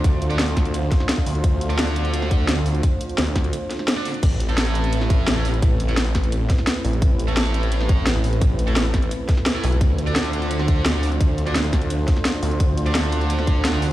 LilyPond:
<<
  \new Staff \with { instrumentName = "Distorted electric guitar" } { \time 4/4 \key a \minor \tempo 4 = 172 r8. <d' a' d''>16 r2. | r8. <d' a' d''>2~ <d' a' d''>8 r8. | r2. r16 <d' a' d''>16 r8 | r8. <a e' a'>2~ <a e' a'>8 <a e' a'>16 r8 |
r8. <a e' a'>16 r2. | r8. <a e' a'>2~ <a e' a'>8 r8. | r8. <a e' a'>16 r2 r16 <a e' a'>16 r8 | r8. <d' a' d''>2~ <d' a' d''>8 <d' a' d''>16 r8 |
r8. <d' a' d''>16 r2. | r8. <d' a' d''>2~ <d' a' d''>8 <d' a' d''>16 r8 | }
  \new Staff \with { instrumentName = "Analog synth pad" } { \time 4/4 \key a \minor << { <d' f' c''>1~ | <d' f' c''>1~ | <d' f' c''>1 | <c' e' b'>1~ |
<c' e' b'>1~ | <c' e' b'>1~ | <c' e' b'>1 | <d' f' c''>1~ |
<d' f' c''>1~ | <d' f' c''>1 | } \\ { a1~ | a1~ | a1 | a1~ |
a1~ | a1~ | a1~ | a1~ |
a1~ | a1 | } >> }
  \new Staff \with { instrumentName = "Detuned saw bass" } { \clef bass \time 4/4 \key a \minor d,2~ d,8 r4 d,8 | d,1 | r4 d,4 r2 | a,,1 |
a,,2~ a,,8 r4 a,,8 | a,,1 | a,,4. a,,8 r4. b,,8 | d,1 |
d,2~ d,8 r4 d,8 | d,1 | }
  \new DrumStaff \with { instrumentName = "Drums" } \drummode { \time 4/4 <hh bd>8 hh16 hh16 <hh sn>16 hh16 <hh bd sn>16 hh16 hh8 <hh bd sn>16 sn16 <hh sn>16 bd16 hho16 hh16 | <hh bd>8 hh16 hh16 <hh sn>16 hh16 hh16 hh16 hh16 sn16 <hh bd>8 <hh sn>8 hho16 hh16 | <hh bd>8 hh16 hh16 <hh sn>16 hh16 <hh bd sn>16 hh16 hh8 <hh sn>16 sn16 <hh sn>8 hho16 hh16 | <cymc hh bd>8 hh16 hh16 <hh sn>16 hh16 hh16 hh16 hh16 sn16 <hh bd>8 <hh sn>8 hho16 hh16 |
<hh bd>8 hh16 hh16 <hh sn>16 hh16 <hh bd sn>16 hh16 hh8 <hh bd sn>16 sn16 <hh sn>8 hho16 hh16 | <hh bd>8 hh16 hh16 <hh sn>16 hh16 hh16 hh16 hh16 sn16 <hh bd>8 <hh sn>8 hho16 hh16 | <hh bd>8 hh16 hh16 <hh sn>16 hh16 <hh bd sn>16 hh16 hh8 <hh bd sn>16 sn16 <hh sn>8 hho16 hh16 | <hh bd>8 hh16 hh16 <hh sn>16 hh16 hh16 hh16 hh16 sn16 <hh bd>8 <hh sn>8 hho16 hh16 |
<hh bd>8 hh16 hh16 <hh sn>16 hh16 <hh bd sn>16 hh16 hh8 <hh bd sn>16 sn16 <hh sn>8 hho16 hh16 | <hh bd>8 hh16 hh16 <hh sn>16 hh16 hh16 hh16 hh16 sn16 <hh bd>8 <hh sn>8 hho8 | }
>>